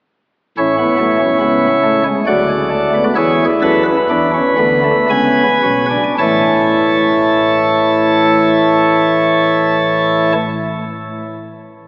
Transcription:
pipe organ
0.58 A1 A2 C#4 E4 C#5
0.78 B3
0.99 B1 B2 A3
1.19 C#4
1.40 C#2 C#3 B3
1.83 A3
2.06 G#3
2.27 D2 D3 F#3 F#4 D5
2.49 G#3
2.70 A3
2.94 B3
3.16 E2 E3 E4 G#4 C#5
3.62 F#2 F#3 A4 B4
3.85 B4
4.10 E2 E3 D4
4.34 C#4
4.58 D2 D3 B3
4.84 A3
5.10 C#2 C#3 B3 G#5
5.63 B1 B2 C#4
5.90 D4
6.18 A1 A2 E3 A3 E4 C#5 A5

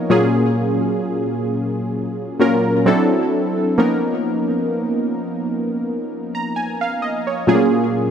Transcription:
synth keys
Already playing: F3 A#3 B3 C#4 D#4 A#4 C#5 D#5 F5 G#5
0.09 A#2 F#3 A#3 C#4 F4 G#4
2.40 A#2 F#3 A#3 C#4 F4 A#4
2.86 F#3 C4 D4 E4 A4
3.78 F3 A#3 B3 C#4 D#4 A#4
6.35 A#5
6.56 G#5
6.81 F5
7.02 D#5
7.27 C#5
7.47 A#2 F#3 A3 C#4 F4 G#4
7.54 A#3

